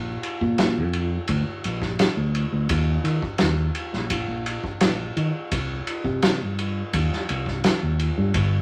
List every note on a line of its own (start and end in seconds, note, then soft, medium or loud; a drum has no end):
0.00 0.15 A#1 medium
0.23 ride medium
0.41 0.78 A#2 medium
0.41 kick medium
0.58 snare medium
0.58 ride medium
0.77 1.17 F2 medium
0.93 ride medium
1.27 1.42 D2 medium
1.27 kick medium
1.27 ride medium
1.64 2.05 A#1 medium
1.64 ride medium
1.82 kick medium
1.82 snare soft
1.99 snare loud
1.99 ride medium
2.17 2.44 D2 medium
2.35 ride medium
2.52 2.66 D2 medium
2.69 2.97 D#2 loud
2.69 kick loud
2.69 ride medium
3.04 3.18 D#3 medium
3.04 ride medium
3.22 kick medium
3.38 3.68 D#2 medium
3.38 snare loud
3.38 ride medium
3.75 ride medium
3.93 4.21 A#1 medium
3.93 snare soft
4.10 kick medium
4.10 ride medium
4.28 4.55 A#1 medium
4.46 ride medium
4.64 kick medium
4.81 5.08 A#1 medium
4.81 snare loud
4.81 ride loud
5.17 5.30 D#3 medium
5.17 ride medium
5.52 5.79 C2 medium
5.52 kick loud
5.52 ride loud
5.87 ride medium
6.04 6.42 C3 medium
6.04 kick medium
6.22 snare loud
6.22 ride medium
6.42 6.82 G2 medium
6.59 ride medium
6.93 7.07 D#2 loud
6.93 kick medium
6.93 ride medium
7.13 snare soft
7.29 7.69 C2 loud
7.29 ride medium
7.46 kick medium
7.46 snare soft
7.64 snare loud
7.64 ride medium
7.83 8.09 D#2 medium
7.99 ride medium
8.18 8.31 G2 medium
8.34 8.61 G1 loud
8.34 kick loud
8.34 ride medium